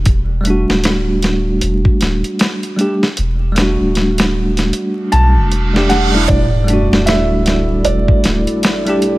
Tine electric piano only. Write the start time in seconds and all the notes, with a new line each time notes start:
0.41 G3 A3
0.47 D4 F#4
2.76 G3 A3 D4
2.81 G4
3.52 G3 A3
3.59 D4 F#4
5.73 G3 A3 D4
5.78 G4
6.12 G3 A3 D4
6.16 E4
6.64 G3 A3
6.70 D4 F#4
8.85 G3 A3 D4
8.90 G4